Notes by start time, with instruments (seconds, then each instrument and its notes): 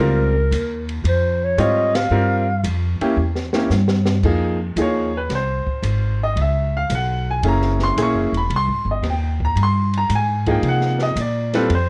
Already playing: clarinet A#4
0.00 upright bass C#2, upright piano G3 C4 F4 A#4
0.51 upright bass D#2, hi-hat pedal, ride
0.89 ride
1.04 upright bass F2, ride
1.08 clarinet C5
1.44 clarinet C#5
1.58 upright bass G#2, upright piano G3 C4 F4 C#5, clarinet D#5, hi-hat pedal, ride
1.95 clarinet F5, snare, ride
2.10 upright bass G2, upright piano G3 C4 F4 A#4
2.64 upright bass F2, hi-hat pedal, ride
3.01 upright piano A#3 C#4 E4 G4, muted upright bass stroke, ride
3.17 upright bass E2
3.36 snare
3.53 upright piano A#3 C#4 E4 G4, snare
3.70 upright bass G2, snare, hi-hat pedal
3.88 snare
4.06 snare
4.23 upright bass F2, upright piano F3 A#3 D#4 G#4, kick, crash
4.76 upright bass D#2, upright piano F3 A#3 D#4 G#4, hi-hat pedal, ride
4.82 upright piano C#5
5.17 upright piano B4
5.29 upright bass C2, snare, ride
5.35 upright piano C5
5.66 muted upright bass stroke, kick
5.83 upright bass G#1, hi-hat pedal, ride
6.23 upright piano D#5
6.36 upright bass C#2, ride
6.42 upright piano E5
6.77 upright piano F5
6.89 upright bass B1, hi-hat pedal, ride
6.95 upright piano F#5
7.31 upright piano G#5
7.43 upright bass F#1, upright piano A#3 C#4 E4 G#4, ride
7.48 upright piano A#5
7.62 snare
7.79 snare
7.83 upright piano C6
7.97 upright bass A#1, upright piano A#3 C#4 E4 G#4, hi-hat pedal, ride
8.02 upright piano C#6
8.14 upright bass F#1
8.32 upright bass E1, ride
8.37 upright piano B5
8.50 upright bass C2, ride
8.56 upright piano C6
8.67 upright bass G#1
8.85 upright bass G1
8.91 upright piano D#5
9.02 upright bass D#2, snare, hi-hat pedal, ride
9.10 upright piano G5
9.40 kick
9.45 upright piano A#5
9.55 upright bass G2, ride
9.63 upright piano C6
9.94 ride
9.98 upright piano A#5
10.09 upright bass G#2, hi-hat pedal, ride
10.15 upright piano G#5
10.46 upright piano F3 A#3 D#4 G#4, kick, ride
10.51 upright piano G5
10.62 upright bass C3, ride
10.68 upright piano F#5
10.81 snare
10.99 upright piano D#5, snare
11.16 upright bass A#2, hi-hat pedal, ride
11.21 upright piano D5
11.54 upright piano G3 C4 F4 A4 B4, snare, ride
11.70 upright bass F2, ride
11.75 upright piano C5